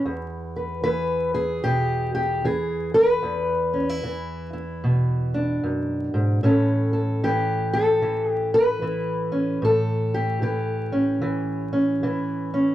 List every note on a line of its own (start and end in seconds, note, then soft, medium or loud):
0.00 0.85 E3 medium
0.05 3.22 E2 medium
0.56 0.83 B4 soft
0.83 2.44 E3 medium
0.83 1.34 B4 loud
1.34 2.44 G#4 medium
1.64 2.44 B2 medium
1.64 2.13 G4 medium
2.15 2.44 G4 medium
2.44 4.03 E3 medium
2.44 2.94 G#4 medium
2.94 6.13 B4 loud
3.23 5.63 E2 medium
3.74 3.89 C#4 soft
3.89 4.52 E4 soft
4.03 6.43 E3 medium
4.53 6.45 E4 soft
4.84 6.43 B2 medium
5.34 6.40 D4 medium
5.64 6.13 F#2 medium
6.14 6.43 G#2 medium
6.43 9.59 A2 medium
6.43 7.23 E3 soft
6.43 9.31 C#4 soft
6.43 7.24 E4 soft
6.43 6.93 A4 soft
6.93 7.73 A4 soft
7.24 8.02 E3 medium
7.24 8.31 G4 medium
7.73 8.31 A4 loud
8.02 8.82 E3 medium
8.31 8.53 G4 loud
8.54 9.63 B4 loud
8.82 10.42 E3 medium
8.82 10.14 E4 soft
9.32 9.58 C#4 soft
9.62 12.75 A2 medium
9.62 10.93 A4 medium
10.14 10.42 G4 medium
10.42 11.21 E3 medium
10.42 12.02 G4 medium
10.92 11.71 C#4 soft
11.21 12.03 E3 medium
11.73 12.52 C#4 soft
12.03 12.75 E3 medium
12.03 12.75 E4 soft
12.54 12.75 C#4 soft